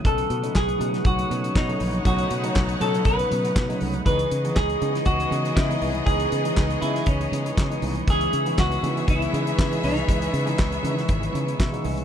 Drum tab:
HH |xxxx-xxxxxxx-xox|xxxx-xxxxxxx-xox|xxxx-xxxxxxx-xox|xxxx-xxxxxxx-xox|
CP |----x-------x---|----x-------x---|----x-------x---|----x-------x---|
SD |----o--o----o---|----o-------o---|----o--o----o---|----o--o----o---|
BD |o---o---o---o---|o---o---o---o---|o---o---o---o---|o---o---o---o---|

HH |xxxx-xxxxxxx-xox|xxxx-xxxxxxx-xox|
CP |----x-------x---|----x-------x---|
SD |----o-------o---|----o--o----o---|
BD |o---o---o---o---|o---o---o---o---|